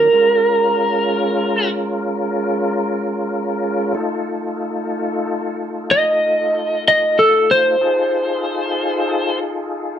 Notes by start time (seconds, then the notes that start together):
Already playing: A#4
0.13 G#3 C#4 F4 A#4
3.94 A3 D#4 F4 A4
5.91 D#5
6.88 D#5
7.19 A4
7.51 C5
7.81 D#4 F4 G#4 A4